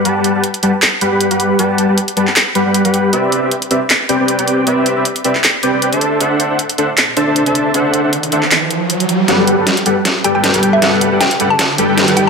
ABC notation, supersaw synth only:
X:1
M:4/4
L:1/16
Q:"Swing 16ths" 1/4=156
K:G
V:1 name="Supersaw synth"
[G,GBfa]3 [G,GBfa] z2 [G,GBfa] z3 [G,GBfb] [G,GBfb]2 [G,GBfb]3 | [G,GBfa]3 [G,GBfa] z2 [G,GBfa] z3 [G,GBfb] [G,GBfb]2 [G,GBfb]3 | [CGBde]3 [CGBde] z2 [CGBde] z3 [CGBdg] [CGBdg]2 [CGBdg]3 | [CGBde]3 [CGBde] z2 [CGBde] z3 [CGBdg] [CGBdg]2 [DAcea]3 |
[DAcef]3 [DAcef] z2 [DAcef] z3 [DAcea] [DAcea]2 [DAcea]3 | [DAcef]3 [DAcef] z2 [DAcef] z8 z | [G,GABf]3 [G,GABf] z2 [G,GABf] z3 [G,GABg] [G,GABg]2 [G,GABg]3 | [G,GABf]3 [G,GABf] z2 [G,GABf] z3 [G,GABg] [G,GABg]2 [G,GABg]3 |]